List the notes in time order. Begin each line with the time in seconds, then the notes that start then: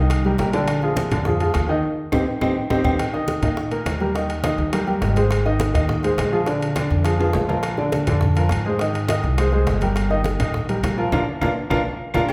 Already playing: C2 D#3 D#4 D#5
0.10 high bongo, high timbale, claves
0.25 G3 G4 A#4, high bongo, high conga
0.38 A#1 G3 G4 A#4, high bongo, low bongo, high conga, high timbale, low timbale
0.53 D3 D4 D5, high bongo, high timbale
0.68 high bongo, high conga, high timbale, claves
0.82 F3 F4 G#4, high bongo, high conga
0.96 high bongo, high conga, high timbale
1.10 F2 D3 D4 D5, high bongo, high conga, low conga, high timbale, claves
1.25 F3 F4 G#4, high bongo, high conga, low conga
1.40 F3 F4 G#4, high bongo, high conga, high timbale
1.54 D#2, high bongo, low bongo, high conga, high timbale, claves
1.69 D#3 D#4 D#5, high conga
2.12 D#2 C4 D#4 G4, high bongo, low conga, high timbale, claves
2.41 D#2 C4 D#4 G4, high bongo, low conga, high timbale, claves
2.70 D#2 C4 D#4 G4, high bongo, low conga, high timbale, claves
2.84 D#2 C4 D#4 G4, high bongo, low conga, high timbale, claves
2.99 high bongo, high conga, high timbale, claves
3.14 D#3 D#4 D#5, high bongo, high conga
3.28 high bongo, high conga, high timbale
3.42 A#2 D#3 D#4 D#5, high bongo, high conga, low conga, high timbale, claves
3.57 high bongo, high conga
3.71 A#3 A#4, high bongo, high conga, high timbale
3.86 D#2, high bongo, low bongo, high conga, high timbale, low timbale, claves
4.00 G3 G4 A#4, high conga
4.14 D#3 D#4 D#5, high bongo, high conga, high timbale
4.29 high conga, high timbale
4.43 D#3 D#4 D#5, high bongo, high conga, high timbale, claves
4.58 D#2, high bongo, high conga
4.73 G3 G4 A#4, high bongo, high conga, high timbale, claves
4.87 G3 G4 A#4, high bongo, high conga
5.02 G#1, high bongo, low bongo, high conga, high timbale, low timbale
5.16 G#3 G#4 C5, high bongo, high conga, high timbale
5.31 high bongo, high conga, high timbale, claves
5.45 D#3 D#4 D#5, high bongo, high conga
5.60 high bongo, high conga, high timbale
5.74 D#2 D#3 D#4 D#5, high bongo, high conga, low conga, high timbale, claves
5.89 high bongo, high conga, low conga
6.03 G#3 G#4 C5, high bongo, high conga, high timbale
6.18 A#1, high bongo, low bongo, high conga, high timbale, low timbale, claves
6.32 F3 F4 G#4, high conga
6.46 D3 D4 D5, high bongo, high timbale
6.61 high conga, high timbale
6.76 D3 D4 D5, high bongo, high conga, high timbale, claves
6.90 F2, high bongo, high conga
7.04 F3 F4 G#4, high bongo, high conga, high timbale, claves
7.19 F3 F4 G#4, high bongo, high conga, high timbale
7.33 A#1, high bongo, low bongo, high conga, low timbale
7.48 F3 F4 A#4, high bongo, high conga, low timbale
7.63 high bongo, high conga, high timbale, claves
7.77 D3 D4 D5, high bongo, high conga
7.92 high bongo, high conga, high timbale
8.07 F2 D3 D4 D5, high bongo, high conga, low conga, high timbale, claves
8.21 high bongo, high conga, low conga
8.35 F3 F4 A#4, high bongo, high conga, high timbale
8.49 G#2, high bongo, low bongo, high conga, high timbale, claves
8.65 G#3 G#4 C5, high conga
8.79 D#3 D#4 D#5, high bongo, high conga, high timbale
8.94 high conga, high timbale
9.09 D#3 D#4 D#5, high bongo, high conga, high timbale, claves
9.23 C2, high bongo, high conga
9.38 G#3 G#4 C5, high bongo, high conga, high timbale, claves
9.52 G#3 G#4 C5, high bongo, high conga
9.67 G1, high bongo, low bongo, high conga, high timbale, low timbale
9.81 G3 G4 A#4, high bongo, high conga, high timbale
9.96 high bongo, high conga, high timbale, claves
10.10 D#3 D#4 D#5, high bongo, high conga
10.24 high bongo, high conga, high timbale
10.40 A#1 D#3 D#4 D#5, high bongo, high conga, low conga, high timbale, claves
10.54 high bongo, high conga, low conga
10.69 G3 G4 A#4, high bongo, high conga, high timbale
10.83 A#1, high bongo, low bongo, high conga, high timbale, claves
10.98 F3 F4 A#4, high conga
11.12 A#1 D4 F4 A#4, low bongo, high conga, high timbale, claves
11.41 A#1 D4 F4 A#4, low bongo, high conga, high timbale, claves
11.70 A#1 D4 F4 A#4, low bongo, high conga, high timbale, claves
12.14 A#1 D4 F4 A#4, low bongo, high conga, high timbale, claves
12.29 high conga, low agogo, claves